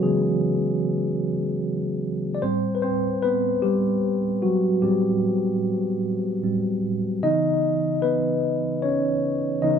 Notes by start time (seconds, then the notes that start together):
Already playing: F#3 G#3 B3 F#4 G#4 B4
0.02 C#3 E3 G#3 B3 G#4
2.35 D5
2.42 A2 G3 C4 C5
2.75 B4
2.82 C4 C5
3.22 B3 B4
3.62 G3 G4
4.42 F#3 F#4
4.82 A2 G3 C4 G4
6.43 A2 G3 C4
7.23 C#3 E3 B3 D#4 D#5
8.02 B3 B4
8.82 C#4 C#5
9.62 C#3 E3 B3 D#4 D#5